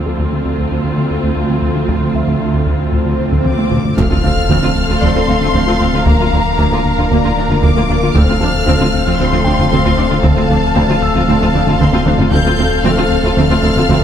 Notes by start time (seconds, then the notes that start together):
Already playing: D2 F3 C4 F4 A4
0.06 D2 F3 A4
0.19 D2 D3
0.32 D3 A3
0.45 D2 C4
0.58 D2 D3, taiko
0.71 D2 C4
0.84 D2 D3
0.98 D3
1.10 D2 C4
1.24 D2 D3
1.36 D2 C4
1.49 D3 A3
1.62 D2 D3
1.75 D3 A3
1.88 D2 D3, taiko, swell
2.01 D3 A3
2.14 D2 F3 E5
2.28 D2 D3, taiko
2.40 D3 A3
2.54 D2 C4
2.66 D2 D3, taiko
2.80 D2 C4
2.92 D2 D3, taiko
3.06 D3
3.19 D2 C4
3.32 D2 D3, taiko
3.46 D2 C4 D6, taiko mid
3.58 D3 A3, taiko high
3.71 D2 D3, taiko low-mid
3.84 D3 A3, taiko low
3.97 D1 D2 F3 A3 C4 A4 F5 F6, taiko, impact
4.11 D2 C4 F4
4.23 D2 A3 C4 F5
4.37 D2
4.50 D2 F3 A3 C4
4.62 D2 D3 C4 F4
4.75 D2
4.88 D2 A3 C4 F4
5.01 D2 F3 A3 C4 D5 C6
5.15 D2 A3 C4 F4
5.28 D2 A3 C4
5.41 D2 D3 C4 F4, taiko low
5.54 D2 F3 A3 C4, taiko
5.67 D2 C4 F4
5.80 D2 C4 F4
5.93 D2 D3 C4 F4
6.06 D2 A#3 D4 A#4 A#5, taiko
6.19 D2 A#3 F4 A#4
6.32 D2 A#3 D4
6.46 D2
6.58 D2 A#3
6.72 D2 D3 A#3 F4
6.85 D2
6.98 D2 A#3 D4 F4
7.11 D2 A#3 A#5
7.24 D2 A#3 D4 F4
7.37 D2 A#3 D4
7.50 D2 D3 A#3 F4, taiko low
7.63 D2 A#3 D6, taiko
7.76 D2 A#3 F4 A#4
7.89 D2 A#3 D4 A#4
8.02 D2 D3 A#3 F4
8.14 D1 D2 D3 F3 A3 C4 A4 F5 F6, taiko
8.28 D2 C4 F4
8.41 D2 F3 C4 D4 A4 A5
8.55 D2
8.67 D2 D3 C4
8.80 D2 D3 A3 C4 F4
8.93 D2
9.06 D2 F3 C4 F4
9.19 D2 D3 C4 C6
9.33 D2 F3 C4 F4
9.44 D2 F3 C4 D4 G5
9.59 D2 D3 A3 C4 F4, taiko low
9.72 D2 D3 C4, taiko
9.85 D2 C4 F4
9.97 D2 C4 D4
10.10 D2 D3 A3 C4 F4
10.23 D2 D3 C4 A5, taiko
10.36 D2 C4 F4
10.50 D2 F3 C4 D4
10.63 D2
10.75 D2 D3 C4
10.89 D2 D3 A3 C4 F4
11.02 D2 E6
11.15 D2 F3 C4 F4
11.28 D2 D3 C4 A5
11.41 D2 F3 C4 F4
11.54 D2 F3 C4 D4
11.67 D2 D3 A3 C4 F4, taiko low
11.80 D2 D3 C4 C6, taiko mid
11.92 D2 C4 F4, taiko high
12.05 D2 C4 D4, taiko mid
12.18 D2 D3 A3 C4 F4, taiko low
12.31 D2 F3 A3 C4 A4 F5 G6, taiko
12.44 D2 C4 F4
12.58 D2 A3 C4
12.71 D2
12.84 D2 F3 A3 C4 F6
12.97 D2 D3 C4 F4
13.10 D2
13.23 D2 A3 C4 F4
13.36 D2 F3 A3 C4 F6
13.50 D2 A3 C4 F4
13.63 D2 A3 C4
13.76 D2 D3 C4 F4, taiko low
13.89 D2 F3 A3 C4, taiko